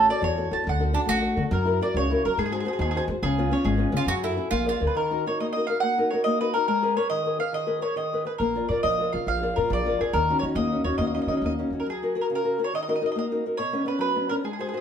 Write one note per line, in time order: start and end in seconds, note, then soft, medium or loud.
0.09 0.32 F#4 medium
0.09 0.32 A4 soft
0.09 0.33 C#5 medium
0.09 0.24 D5 loud
0.21 0.41 E2 loud
0.21 0.50 E3 medium
0.21 0.51 C#5 medium
0.37 0.50 F#4 soft
0.37 0.50 A4 soft
0.37 0.50 C#5 soft
0.51 0.56 A1 medium
0.51 0.62 F#4 soft
0.51 0.63 A4 soft
0.51 0.63 C#5 soft
0.51 0.67 A5 medium
0.64 0.94 D2 medium
0.64 0.93 D3 medium
0.69 1.22 F#5 medium
0.79 0.92 D4 soft
0.79 0.92 F#4 soft
0.79 0.92 A4 medium
0.93 1.17 D4 soft
0.93 0.99 D4 medium
0.93 1.17 F#4 soft
0.93 1.17 A4 medium
1.06 1.27 A1 medium
1.06 1.35 A3 medium
1.06 1.42 F#4 loud
1.21 1.35 D4 soft
1.21 1.36 F#4 soft
1.21 1.37 A4 soft
1.36 1.42 D3 medium
1.36 1.48 D4 soft
1.36 1.48 F#4 soft
1.36 1.49 A4 soft
1.51 1.79 F#2 loud
1.51 1.80 F#3 medium
1.51 1.80 A#4 medium
1.65 1.80 E4 soft
1.65 1.81 F#4 soft
1.65 1.81 A#4 soft
1.81 2.05 E4 medium
1.81 2.05 F#4 soft
1.81 2.05 A#4 medium
1.81 1.96 D5 medium
1.94 2.14 C#2 medium
1.94 2.24 C#3 medium
1.94 2.25 C#5 medium
2.11 2.24 E4 soft
2.11 2.24 F#4 soft
2.11 2.24 A#4 soft
2.25 2.29 F#3 medium
2.25 2.36 F#4 soft
2.25 2.36 A#4 soft
2.25 2.37 A#4 medium
2.38 2.65 G#2 medium
2.38 2.66 G#3 medium
2.38 2.44 G#4 medium
2.46 2.51 G#4 medium
2.51 2.64 F#4 medium
2.51 2.64 G#4 soft
2.51 2.59 G#4 medium
2.51 2.65 C5 soft
2.60 2.67 G#4 medium
2.65 2.89 F#4 medium
2.65 2.89 G#4 soft
2.65 2.72 G#4 medium
2.65 2.89 C5 medium
2.73 2.80 G#4 medium
2.79 2.98 D#2 loud
2.79 3.07 D#3 medium
2.79 2.88 G#4 medium
2.91 2.96 G#4 medium
2.95 3.08 F#4 soft
2.95 3.09 G#4 soft
2.95 3.03 G#4 medium
2.95 3.09 C5 soft
3.08 3.12 G#2 loud
3.08 3.20 F#4 soft
3.08 3.20 G#4 soft
3.08 3.20 C5 soft
3.23 3.50 C#2 loud
3.23 3.51 C#3 medium
3.23 3.52 G#4 loud
3.38 3.50 B3 medium
3.38 3.50 C#4 medium
3.38 3.51 F4 medium
3.51 3.74 B3 medium
3.51 3.74 C#4 soft
3.51 3.75 F4 medium
3.51 3.66 C#5 medium
3.64 3.83 G#1 loud
3.64 3.92 G#3 medium
3.64 4.77 G#4 medium
3.78 3.91 B3 soft
3.78 3.92 C#4 soft
3.78 3.91 F4 soft
3.92 3.97 C#3 medium
3.92 4.04 B3 soft
3.92 4.04 C#4 soft
3.92 4.04 F4 soft
3.97 4.08 F4 medium
4.06 4.35 F#2 medium
4.06 4.36 F#3 medium
4.06 4.13 F#4 loud
4.24 4.36 E4 soft
4.24 4.50 E4 medium
4.24 4.36 F#4 soft
4.24 4.36 A4 medium
4.37 4.48 E4 soft
4.37 4.48 F#4 soft
4.37 4.48 A4 medium
4.51 4.70 A#1 medium
4.51 4.80 A#3 medium
4.51 4.65 F4 medium
4.65 4.79 G#4 soft
4.65 4.80 A#4 soft
4.65 4.79 D5 soft
4.69 4.94 F4 medium
4.80 4.85 D2 medium
4.80 4.92 G#4 soft
4.80 4.92 A#4 soft
4.80 4.92 D5 soft
4.87 4.94 B4 medium
4.95 5.24 D#3 medium
4.95 5.23 A#4 medium
5.11 5.26 D#4 soft
5.11 5.26 F#4 soft
5.11 5.26 A#4 soft
5.26 5.50 D#4 soft
5.26 5.50 F#4 soft
5.26 5.49 A#4 medium
5.26 5.39 C#5 medium
5.40 5.68 A#3 medium
5.40 5.45 D#5 medium
5.53 5.67 D#4 soft
5.53 5.68 F#4 soft
5.53 5.68 D#5 medium
5.57 5.68 A#4 soft
5.67 5.92 D#4 soft
5.67 5.92 F#4 soft
5.67 5.92 A#4 soft
5.67 5.80 F5 medium
5.80 6.11 A#3 medium
5.80 6.08 F#5 loud
5.98 6.12 D#4 soft
5.98 6.12 F#4 soft
5.98 6.13 A#4 medium
6.10 6.36 D#4 soft
6.10 6.36 F#4 soft
6.10 6.36 A#4 medium
6.10 6.24 C#5 medium
6.24 6.54 A#3 medium
6.24 6.40 D#5 medium
6.40 6.53 D#4 soft
6.40 6.54 F#4 soft
6.40 6.54 A#4 soft
6.40 6.53 B4 medium
6.54 6.65 D#4 soft
6.54 6.65 F#4 soft
6.54 6.67 A#4 medium
6.54 6.66 A#4 soft
6.68 6.96 G#3 medium
6.68 6.96 A#4 medium
6.82 6.95 G#4 medium
6.82 6.95 A#4 soft
6.82 6.96 B4 soft
6.96 7.19 G#4 soft
6.96 7.20 A#4 soft
6.96 7.20 B4 medium
6.96 7.09 C#5 medium
7.10 7.38 D#3 medium
7.10 7.37 D#5 loud
7.26 7.37 G#4 soft
7.26 7.38 A#4 soft
7.26 7.39 B4 soft
7.39 7.62 G#4 soft
7.39 7.63 A#4 soft
7.39 7.63 B4 soft
7.39 7.52 F5 medium
7.53 7.81 D#3 medium
7.53 7.81 D#5 medium
7.67 7.80 G#4 soft
7.67 7.81 A#4 soft
7.67 7.81 B4 medium
7.81 8.06 G#4 medium
7.81 8.06 A#4 soft
7.81 8.06 B4 medium
7.81 7.95 C#5 medium
7.96 8.25 D#3 medium
7.96 8.26 D#5 medium
8.13 8.24 G#4 soft
8.13 8.24 A#4 soft
8.13 8.25 B4 soft
8.25 8.37 G#4 soft
8.25 8.37 A#4 soft
8.25 8.38 B4 soft
8.25 8.32 B4 medium
8.38 8.60 A#1 medium
8.38 8.69 A#3 medium
8.38 8.67 A#4 medium
8.55 8.69 F4 soft
8.55 8.69 A#4 soft
8.55 8.70 D5 soft
8.69 8.79 A#2 medium
8.69 8.94 F4 medium
8.69 8.94 A#4 soft
8.69 8.83 D5 medium
8.69 8.95 D5 soft
8.83 9.03 A#1 medium
8.83 9.13 F3 medium
8.83 9.11 D#5 medium
9.00 9.12 F4 soft
9.00 9.12 A#4 soft
9.00 9.13 D5 soft
9.13 9.23 A#1 medium
9.13 9.37 F4 soft
9.13 9.37 A#4 soft
9.13 9.38 D5 soft
9.13 9.26 F5 medium
9.27 9.46 A#1 medium
9.27 9.56 F3 medium
9.27 9.55 F5 medium
9.42 9.56 F4 soft
9.42 9.56 A#4 soft
9.42 9.56 D5 medium
9.56 9.66 A#2 medium
9.56 9.80 F4 medium
9.56 9.69 A#4 medium
9.56 9.80 A#4 soft
9.56 9.80 D5 soft
9.70 9.89 A#1 loud
9.70 9.99 F3 medium
9.70 9.99 D5 loud
9.86 9.99 F4 soft
9.86 9.99 A#4 soft
9.86 9.99 D5 soft
10.00 10.09 A#1 medium
10.00 10.11 F4 soft
10.00 10.13 G#4 medium
10.00 10.11 A#4 soft
10.00 10.11 D5 soft
10.13 10.32 D#2 loud
10.13 10.42 D#3 medium
10.13 10.39 A#4 medium
10.30 10.42 C#4 soft
10.30 10.43 D#4 soft
10.30 10.43 F#4 medium
10.39 10.52 D#3 medium
10.39 10.66 C#4 soft
10.39 10.44 C#5 medium
10.44 10.66 D#4 soft
10.44 10.67 F#4 medium
10.55 10.74 D#2 loud
10.55 10.85 A#3 medium
10.55 10.83 D#5 medium
10.72 10.83 C#4 soft
10.72 10.84 D#4 soft
10.72 10.84 F#4 soft
10.84 10.93 D#2 medium
10.84 11.08 C#4 soft
10.84 11.08 D#4 soft
10.84 11.09 F#4 soft
10.84 10.97 C#5 medium
10.98 11.18 D#2 medium
10.98 11.27 A#3 medium
10.98 11.06 D#5 medium
11.07 11.13 D#5 medium
11.14 11.28 C#4 soft
11.14 11.29 D#4 soft
11.14 11.29 F#4 soft
11.14 11.20 D#5 medium
11.22 11.27 D#5 medium
11.27 11.36 D#3 medium
11.27 11.52 C#4 soft
11.27 11.53 D#4 soft
11.27 11.53 F#4 medium
11.27 11.35 D#5 medium
11.37 11.43 D#5 soft
11.42 11.61 D#2 medium
11.42 11.72 A#3 soft
11.46 11.52 D#5 medium
11.59 11.71 C#4 soft
11.59 11.72 D#4 soft
11.59 11.73 F#4 soft
11.70 11.80 D#2 medium
11.70 11.83 C#4 soft
11.70 11.84 D#4 soft
11.70 11.84 F#4 soft
11.80 11.86 A#4 medium
11.86 12.15 F#3 medium
11.86 12.15 G#4 medium
12.02 12.14 F#4 soft
12.02 12.14 G#4 soft
12.02 12.15 A#4 soft
12.15 12.39 F#4 medium
12.15 12.39 G#4 soft
12.15 12.39 A#4 medium
12.21 12.26 A#4 medium
12.30 12.58 C#3 medium
12.35 12.60 A#4 medium
12.44 12.58 F#4 soft
12.44 12.57 G#4 soft
12.44 12.58 A#4 soft
12.58 12.70 F#4 soft
12.58 12.69 G#4 soft
12.58 12.70 A#4 soft
12.64 12.74 C#5 medium
12.73 13.01 D#3 soft
12.73 12.81 D#5 medium
12.83 12.88 D#5 medium
12.88 13.00 D#4 soft
12.88 13.01 F#4 soft
12.88 13.02 A#4 medium
12.88 12.94 D#5 medium
12.96 13.02 D#5 medium
13.01 13.24 D#4 soft
13.01 13.25 F#4 soft
13.01 13.25 A#4 medium
13.06 13.10 D#5 medium
13.12 13.43 A#3 medium
13.12 13.17 D#5 medium
13.19 13.25 D#5 medium
13.32 13.45 D#4 soft
13.32 13.45 F#4 soft
13.32 13.45 A#4 soft
13.46 13.56 D#4 soft
13.46 13.56 F#4 soft
13.46 13.56 A#4 soft
13.57 13.86 B2 medium
13.57 13.84 C#5 medium
13.73 13.84 B3 soft
13.73 13.84 C#4 soft
13.73 13.85 D4 medium
13.85 14.09 B3 medium
13.85 14.09 C#4 soft
13.85 14.09 D4 medium
13.85 14.00 B4 medium
13.99 14.28 F#3 medium
13.99 14.28 B4 medium
14.15 14.28 B3 soft
14.15 14.29 C#4 soft
14.15 14.29 D4 soft
14.29 14.40 B3 soft
14.29 14.41 C#4 soft
14.29 14.41 D4 soft
14.29 14.34 A#4 medium
14.44 14.72 G#3 medium
14.44 14.51 G#4 medium
14.53 14.59 G#4 medium
14.59 14.72 F#4 soft
14.59 14.73 G#4 soft
14.59 14.66 G#4 medium
14.59 14.73 C5 medium
14.69 14.74 G#4 soft
14.73 14.81 F#4 soft
14.73 14.81 G#4 soft
14.73 14.81 C5 medium
14.77 14.81 G#4 medium